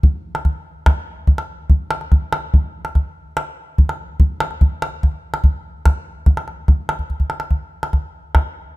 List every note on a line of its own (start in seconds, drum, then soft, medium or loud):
0.03 calabash thump medium
0.35 calabash click medium
0.45 calabash thump medium
0.45 calabash click soft
0.86 calabash thump medium
0.86 calabash click medium
1.27 calabash thump medium
1.38 calabash click medium
1.70 calabash thump medium
1.91 calabash click medium
2.01 calabash click soft
2.12 calabash thump medium
2.12 calabash click soft
2.33 calabash click medium
2.54 calabash thump medium
2.85 calabash click soft
2.95 calabash thump medium
2.95 calabash click soft
3.37 calabash click medium
3.78 calabash thump medium
3.89 calabash click soft
4.20 calabash thump medium
4.40 calabash click medium
4.51 calabash click soft
4.61 calabash thump medium
4.82 calabash click medium
5.03 calabash thump medium
5.34 calabash click soft
5.44 calabash thump medium
5.86 calabash thump medium
5.86 calabash click medium
6.26 calabash thump medium
6.26 calabash click soft
6.37 calabash click soft
6.48 calabash click soft
6.68 calabash thump medium
6.68 calabash click soft
6.89 calabash click medium
6.99 calabash thump soft
7.10 calabash thump soft
7.20 calabash thump soft
7.30 calabash click soft
7.40 calabash click soft
7.51 calabash thump medium
7.83 calabash click soft
7.93 calabash thump medium
7.93 calabash click soft
8.35 calabash thump medium
8.35 calabash click medium